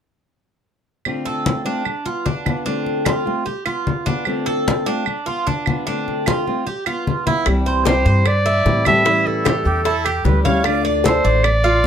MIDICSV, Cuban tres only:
0, 0, Header, 1, 2, 480
1, 0, Start_track
1, 0, Key_signature, 0, "major"
1, 0, Tempo, 399467
1, 1272, Time_signature, 4, 2, 24, 8
1, 14262, End_track
2, 0, Start_track
2, 0, Title_t, "Cuban tres"
2, 0, Program_c, 0, 25
2, 1508, Note_on_c, 0, 69, 65
2, 1977, Note_off_c, 0, 69, 0
2, 1990, Note_on_c, 0, 62, 67
2, 2459, Note_off_c, 0, 62, 0
2, 2470, Note_on_c, 0, 65, 58
2, 2707, Note_off_c, 0, 65, 0
2, 2711, Note_on_c, 0, 62, 64
2, 3181, Note_off_c, 0, 62, 0
2, 3193, Note_on_c, 0, 62, 67
2, 3663, Note_off_c, 0, 62, 0
2, 3673, Note_on_c, 0, 65, 58
2, 4143, Note_off_c, 0, 65, 0
2, 4153, Note_on_c, 0, 67, 54
2, 4389, Note_off_c, 0, 67, 0
2, 4394, Note_on_c, 0, 65, 59
2, 4864, Note_off_c, 0, 65, 0
2, 4878, Note_on_c, 0, 62, 80
2, 5347, Note_off_c, 0, 62, 0
2, 5360, Note_on_c, 0, 69, 70
2, 5828, Note_off_c, 0, 69, 0
2, 5843, Note_on_c, 0, 62, 76
2, 6310, Note_off_c, 0, 62, 0
2, 6322, Note_on_c, 0, 65, 64
2, 6556, Note_off_c, 0, 65, 0
2, 6569, Note_on_c, 0, 62, 69
2, 7033, Note_off_c, 0, 62, 0
2, 7050, Note_on_c, 0, 62, 71
2, 7513, Note_off_c, 0, 62, 0
2, 7529, Note_on_c, 0, 65, 60
2, 7993, Note_off_c, 0, 65, 0
2, 8010, Note_on_c, 0, 67, 53
2, 8240, Note_off_c, 0, 67, 0
2, 8248, Note_on_c, 0, 65, 61
2, 8712, Note_off_c, 0, 65, 0
2, 8732, Note_on_c, 0, 64, 75
2, 8961, Note_off_c, 0, 64, 0
2, 9206, Note_on_c, 0, 72, 63
2, 9436, Note_on_c, 0, 67, 68
2, 9438, Note_off_c, 0, 72, 0
2, 9673, Note_off_c, 0, 67, 0
2, 9681, Note_on_c, 0, 72, 60
2, 10147, Note_off_c, 0, 72, 0
2, 10161, Note_on_c, 0, 64, 74
2, 10627, Note_off_c, 0, 64, 0
2, 10648, Note_on_c, 0, 69, 68
2, 10874, Note_off_c, 0, 69, 0
2, 10879, Note_on_c, 0, 64, 66
2, 11345, Note_off_c, 0, 64, 0
2, 11357, Note_on_c, 0, 67, 66
2, 11823, Note_off_c, 0, 67, 0
2, 11842, Note_on_c, 0, 64, 68
2, 12072, Note_off_c, 0, 64, 0
2, 12084, Note_on_c, 0, 67, 66
2, 12545, Note_off_c, 0, 67, 0
2, 12557, Note_on_c, 0, 77, 73
2, 13021, Note_off_c, 0, 77, 0
2, 13034, Note_on_c, 0, 74, 66
2, 13266, Note_off_c, 0, 74, 0
2, 13278, Note_on_c, 0, 69, 60
2, 13508, Note_off_c, 0, 69, 0
2, 13513, Note_on_c, 0, 74, 67
2, 13977, Note_off_c, 0, 74, 0
2, 13985, Note_on_c, 0, 65, 74
2, 14262, Note_off_c, 0, 65, 0
2, 14262, End_track
0, 0, End_of_file